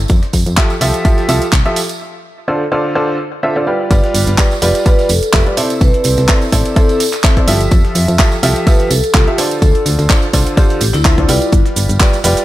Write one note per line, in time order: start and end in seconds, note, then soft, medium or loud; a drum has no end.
0.08 0.20 F2 loud
0.08 kick loud
0.08 closed hi-hat medium
0.08 tambourine soft
0.23 snare soft
0.23 closed hi-hat soft
0.33 0.44 F2 medium
0.33 kick medium
0.33 closed hi-hat medium
0.33 open hi-hat loud
0.33 tambourine medium
0.46 0.55 F2 loud
0.46 closed hi-hat medium
0.46 tambourine soft
0.57 0.72 F3 medium
0.57 0.72 F4 medium
0.57 0.72 G4 medium
0.57 0.72 A4 medium
0.57 0.72 E5 medium
0.57 kick loud
0.57 snare loud
0.57 clap loud
0.57 closed hi-hat medium
0.57 tambourine medium
0.70 closed hi-hat soft
0.70 tambourine soft
0.81 0.92 C2 medium
0.81 1.02 F3 medium
0.81 1.02 F4 medium
0.81 1.02 G4 medium
0.81 1.02 A4 medium
0.81 1.02 E5 loud
0.81 closed hi-hat medium
0.81 open hi-hat loud
0.81 tambourine medium
0.94 snare soft
0.94 closed hi-hat medium
0.94 tambourine soft
1.05 1.26 F3 medium
1.05 1.26 F4 medium
1.05 1.26 G4 medium
1.05 1.26 A4 medium
1.05 1.26 E5 loud
1.05 kick loud
1.05 closed hi-hat medium
1.05 tambourine soft
1.18 snare soft
1.18 closed hi-hat soft
1.18 tambourine soft
1.29 1.39 C2 medium
1.29 1.43 F3 medium
1.29 1.43 F4 medium
1.29 1.43 G4 medium
1.29 1.43 A4 medium
1.29 1.43 E5 loud
1.29 closed hi-hat medium
1.29 open hi-hat loud
1.29 tambourine medium
1.42 closed hi-hat medium
1.42 tambourine soft
1.53 1.63 C2 loud
1.53 kick loud
1.53 snare loud
1.53 clap loud
1.53 closed hi-hat medium
1.53 tambourine soft
1.66 1.78 F3 medium
1.66 1.78 F4 medium
1.66 1.78 G4 medium
1.66 1.78 A4 medium
1.66 1.78 E5 loud
1.66 closed hi-hat soft
1.76 closed hi-hat medium
1.76 open hi-hat loud
1.76 tambourine medium
1.89 closed hi-hat medium
1.89 tambourine soft
2.48 2.62 D3 medium
2.48 2.62 F4 medium
2.48 2.62 A4 medium
2.48 2.62 C5 medium
2.48 2.62 D5 medium
2.72 2.93 D3 medium
2.72 2.93 F4 medium
2.72 2.93 A4 medium
2.72 2.93 C5 medium
2.72 2.93 D5 loud
2.95 3.17 D3 loud
2.95 3.17 F4 medium
2.95 3.17 A4 medium
2.95 3.17 C5 medium
2.95 3.17 D5 loud
3.43 3.54 D3 medium
3.43 3.54 F4 medium
3.43 3.54 A4 medium
3.43 3.54 C5 medium
3.43 3.54 E5 medium
3.56 3.64 D3 medium
3.56 3.64 F4 medium
3.56 3.64 A4 medium
3.56 3.64 C5 medium
3.56 3.64 D5 medium
3.67 3.89 G3 medium
3.67 3.89 F4 medium
3.67 3.89 G4 medium
3.67 3.89 B4 medium
3.67 3.89 D5 medium
3.91 4.01 G1 loud
3.91 4.34 G3 loud
3.91 4.34 F4 medium
3.91 4.34 G4 medium
3.91 4.34 B4 medium
3.91 4.34 D5 loud
3.91 kick loud
3.91 closed hi-hat medium
3.91 tambourine medium
4.04 snare soft
4.04 closed hi-hat soft
4.14 4.25 G1 medium
4.14 closed hi-hat medium
4.14 open hi-hat loud
4.14 tambourine loud
4.27 4.36 G1 loud
4.27 closed hi-hat medium
4.27 tambourine soft
4.38 4.53 G3 medium
4.38 4.53 F4 medium
4.38 4.53 G4 medium
4.38 4.53 B4 medium
4.38 4.53 D5 medium
4.38 kick loud
4.38 snare loud
4.38 clap loud
4.38 closed hi-hat medium
4.38 tambourine medium
4.51 closed hi-hat soft
4.51 tambourine soft
4.62 4.73 F1 medium
4.62 4.83 G3 medium
4.62 4.83 F4 medium
4.62 4.83 G4 medium
4.62 4.83 B4 medium
4.62 4.83 D5 loud
4.62 closed hi-hat medium
4.62 open hi-hat loud
4.62 tambourine loud
4.75 snare soft
4.75 closed hi-hat medium
4.75 tambourine soft
4.86 5.07 G3 medium
4.86 5.07 F4 medium
4.86 5.07 G4 medium
4.86 5.07 B4 medium
4.86 5.08 B4 medium
4.86 5.07 D5 loud
4.86 kick loud
4.86 closed hi-hat medium
4.86 tambourine medium
4.99 snare soft
4.99 closed hi-hat soft
4.99 tambourine soft
5.09 5.20 F1 medium
5.09 5.18 A4 medium
5.09 closed hi-hat medium
5.09 open hi-hat loud
5.09 tambourine loud
5.23 5.30 A4 medium
5.23 closed hi-hat medium
5.23 tambourine soft
5.33 5.44 F1 loud
5.33 5.44 G3 medium
5.33 5.44 F4 medium
5.33 5.44 G4 medium
5.33 5.44 B4 medium
5.33 5.44 E5 medium
5.33 kick loud
5.33 snare loud
5.33 clap loud
5.33 closed hi-hat medium
5.33 tambourine soft
5.46 5.55 G3 medium
5.46 5.55 F4 medium
5.46 5.55 G4 medium
5.46 5.55 B4 medium
5.46 5.55 D5 medium
5.46 closed hi-hat soft
5.57 6.26 C3 medium
5.57 6.26 E4 medium
5.57 6.26 A4 medium
5.57 6.26 C5 medium
5.57 6.26 D5 medium
5.57 closed hi-hat medium
5.57 open hi-hat loud
5.57 tambourine medium
5.70 closed hi-hat medium
5.70 tambourine soft
5.81 5.92 C2 loud
5.81 6.29 B4 loud
5.81 kick loud
5.81 closed hi-hat medium
5.81 tambourine medium
5.94 closed hi-hat soft
6.04 6.16 C2 medium
6.04 snare soft
6.04 closed hi-hat medium
6.04 open hi-hat loud
6.04 tambourine medium
6.17 6.27 C2 loud
6.17 snare medium
6.17 closed hi-hat medium
6.17 tambourine soft
6.29 6.43 C3 medium
6.29 6.43 E4 medium
6.29 6.43 A4 medium
6.29 6.43 C5 medium
6.29 6.43 D5 medium
6.29 kick loud
6.29 snare loud
6.29 clap loud
6.29 closed hi-hat medium
6.29 tambourine medium
6.42 closed hi-hat soft
6.42 tambourine soft
6.52 6.63 A1 loud
6.52 6.74 C3 medium
6.52 6.74 E4 medium
6.52 6.74 A4 medium
6.52 6.74 C5 medium
6.52 6.74 D5 loud
6.52 kick medium
6.52 closed hi-hat medium
6.52 open hi-hat loud
6.52 tambourine loud
6.65 closed hi-hat medium
6.65 closed hi-hat soft
6.65 tambourine soft
6.76 6.98 C3 loud
6.76 6.98 E4 medium
6.76 6.85 A4 medium
6.76 6.98 A4 medium
6.76 6.98 C5 medium
6.76 6.98 D5 loud
6.76 kick loud
6.76 closed hi-hat soft
6.76 closed hi-hat medium
6.76 tambourine medium
6.89 6.96 A4 medium
6.89 closed hi-hat soft
6.89 tambourine soft
7.00 snare soft
7.00 closed hi-hat medium
7.00 open hi-hat loud
7.00 tambourine loud
7.13 clap soft
7.13 closed hi-hat medium
7.13 tambourine soft
7.24 7.35 C3 medium
7.24 7.35 E4 medium
7.24 7.35 A4 medium
7.24 7.35 C5 medium
7.24 7.35 E5 medium
7.24 kick loud
7.24 snare loud
7.24 clap loud
7.24 closed hi-hat medium
7.24 tambourine medium
7.37 7.45 C3 medium
7.37 7.45 E4 medium
7.37 7.45 A4 medium
7.37 7.45 C5 medium
7.37 7.45 D5 medium
7.37 kick medium
7.37 closed hi-hat soft
7.48 7.68 G1 medium
7.48 8.17 F3 medium
7.48 8.17 F4 medium
7.48 8.17 G4 medium
7.48 8.17 A4 medium
7.48 8.17 E5 medium
7.48 closed hi-hat medium
7.48 open hi-hat loud
7.48 tambourine medium
7.61 closed hi-hat medium
7.61 tambourine soft
7.71 7.82 F2 loud
7.71 kick loud
7.71 closed hi-hat medium
7.71 tambourine medium
7.85 snare soft
7.85 closed hi-hat soft
7.95 8.06 F2 medium
7.95 closed hi-hat medium
7.95 open hi-hat loud
7.95 tambourine medium
8.08 8.17 F2 loud
8.08 closed hi-hat medium
8.08 tambourine soft
8.19 8.34 F3 medium
8.19 8.34 F4 medium
8.19 8.34 G4 medium
8.19 8.34 A4 medium
8.19 8.34 E5 loud
8.19 kick loud
8.19 snare loud
8.19 clap loud
8.19 closed hi-hat medium
8.19 tambourine medium
8.32 closed hi-hat soft
8.32 tambourine soft
8.43 8.54 C2 medium
8.43 8.64 F3 medium
8.43 8.64 F4 medium
8.43 8.64 G4 medium
8.43 8.64 A4 medium
8.43 8.64 E5 medium
8.43 closed hi-hat medium
8.43 open hi-hat loud
8.43 tambourine loud
8.56 snare soft
8.56 closed hi-hat medium
8.56 tambourine soft
8.67 8.88 F3 medium
8.67 8.88 F4 medium
8.67 8.88 G4 medium
8.67 8.88 A4 medium
8.67 8.89 B4 medium
8.67 8.88 E5 loud
8.67 kick loud
8.67 closed hi-hat medium
8.67 closed hi-hat soft
8.67 tambourine medium
8.79 snare soft
8.79 closed hi-hat soft
8.79 tambourine soft
8.91 9.01 C2 loud
8.91 8.99 A4 medium
8.91 closed hi-hat medium
8.91 open hi-hat loud
8.91 tambourine loud
9.03 9.11 A4 medium
9.03 closed hi-hat medium
9.03 tambourine soft
9.14 9.25 C2 loud
9.14 9.25 F3 medium
9.14 9.25 F4 medium
9.14 9.25 G4 medium
9.14 9.25 A4 medium
9.14 9.25 F5 medium
9.14 kick loud
9.14 snare loud
9.14 clap loud
9.14 closed hi-hat medium
9.14 tambourine medium
9.27 9.36 F3 medium
9.27 9.36 F4 medium
9.27 9.36 G4 medium
9.27 9.45 G4 medium
9.27 9.36 A4 medium
9.27 9.36 E5 medium
9.27 closed hi-hat soft
9.38 10.07 D3 medium
9.38 10.07 F4 medium
9.38 10.07 A4 medium
9.38 10.07 C5 medium
9.38 10.07 D5 medium
9.38 closed hi-hat medium
9.38 open hi-hat loud
9.38 tambourine medium
9.51 closed hi-hat medium
9.51 tambourine soft
9.62 9.73 D2 loud
9.62 9.81 A4 medium
9.62 kick loud
9.62 closed hi-hat medium
9.62 tambourine soft
9.75 closed hi-hat soft
9.86 9.96 D2 medium
9.86 snare soft
9.86 closed hi-hat medium
9.86 open hi-hat loud
9.86 tambourine medium
9.99 10.08 D2 loud
9.99 snare soft
9.99 closed hi-hat soft
9.99 tambourine soft
10.10 10.24 D3 medium
10.10 10.24 F4 medium
10.10 10.24 A4 medium
10.10 10.24 C5 medium
10.10 10.24 D5 medium
10.10 kick loud
10.10 snare loud
10.10 clap loud
10.10 closed hi-hat medium
10.10 tambourine medium
10.22 closed hi-hat soft
10.22 tambourine soft
10.33 10.44 C2 medium
10.33 10.55 D3 medium
10.33 10.55 F4 medium
10.33 10.55 A4 medium
10.33 10.55 C5 medium
10.33 10.55 D5 loud
10.33 kick medium
10.33 closed hi-hat medium
10.33 open hi-hat loud
10.33 tambourine loud
10.46 closed hi-hat soft
10.46 closed hi-hat medium
10.46 tambourine soft
10.57 10.78 D3 loud
10.57 10.78 F4 medium
10.57 10.91 G4 medium
10.57 10.78 A4 medium
10.57 10.78 C5 medium
10.57 10.79 D5 loud
10.57 kick loud
10.57 closed hi-hat medium
10.57 closed hi-hat soft
10.57 tambourine medium
10.70 closed hi-hat soft
10.70 tambourine soft
10.81 10.92 A1 medium
10.81 snare soft
10.81 closed hi-hat medium
10.81 open hi-hat loud
10.81 tambourine loud
10.93 11.26 D2 medium
10.93 11.58 E4 medium
10.93 clap soft
10.93 closed hi-hat soft
10.93 tambourine soft
11.05 11.16 D3 medium
11.05 11.16 F4 medium
11.05 11.16 A4 medium
11.05 11.16 C5 medium
11.05 11.16 E5 medium
11.05 kick loud
11.05 snare loud
11.05 clap loud
11.05 closed hi-hat medium
11.05 tambourine medium
11.18 11.26 D3 medium
11.18 11.26 F4 medium
11.18 11.26 A4 medium
11.18 11.26 C5 medium
11.18 11.26 D5 medium
11.18 kick medium
11.18 closed hi-hat soft
11.29 11.39 C2 medium
11.29 11.98 G3 medium
11.29 11.98 F4 medium
11.29 11.98 G4 medium
11.29 11.98 B4 medium
11.29 11.98 D5 medium
11.29 closed hi-hat medium
11.29 open hi-hat loud
11.29 tambourine medium
11.41 closed hi-hat medium
11.41 tambourine soft
11.52 11.63 G1 medium
11.52 kick loud
11.52 closed hi-hat loud
11.52 closed hi-hat medium
11.52 tambourine medium
11.52 shaker soft
11.66 snare soft
11.66 closed hi-hat soft
11.66 shaker soft
11.76 11.87 G1 medium
11.76 closed hi-hat medium
11.76 open hi-hat loud
11.76 tambourine medium
11.76 shaker medium
11.89 11.98 G1 loud
11.89 closed hi-hat medium
11.89 tambourine soft
11.89 shaker soft
12.00 12.15 G3 medium
12.00 12.15 F4 medium
12.00 12.15 G4 medium
12.00 12.15 B4 medium
12.00 12.15 D5 medium
12.00 kick loud
12.00 snare loud
12.00 clap loud
12.00 closed hi-hat medium
12.00 tambourine medium
12.00 shaker soft
12.13 closed hi-hat soft
12.13 tambourine soft
12.13 shaker soft
12.24 12.35 F1 medium
12.24 12.45 G3 medium
12.24 12.45 F4 medium
12.24 12.45 G4 medium
12.24 12.45 B4 medium
12.24 12.45 D5 medium
12.24 closed hi-hat medium
12.24 open hi-hat loud
12.24 tambourine medium
12.24 shaker medium
12.37 snare soft
12.37 closed hi-hat medium
12.37 tambourine soft
12.37 shaker soft